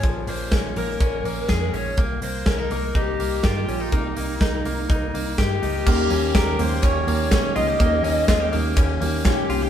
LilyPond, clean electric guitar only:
\new Staff \with { instrumentName = "Clean electric guitar" } { \time 4/4 \key ees \mixolydian \tempo 4 = 124 <f bes des' aes'>8 bes8 des'8 bes8 des'8 bes8 aes'8 des'8 | bes8 bes8 des'16 ees'16 bes8 ees'8 bes8 g'8 des'16 ees'16 | bes8 bes8 ees'8 bes8 ees'8 bes8 g'8 ees'8 | bes8 des'8 g'8 bes8 des'8 bes8 des'8 f'16 g'16 |
bes8 des'8 f'16 g'16 bes8 des'8 bes8 des'8 f'16 g'16 | }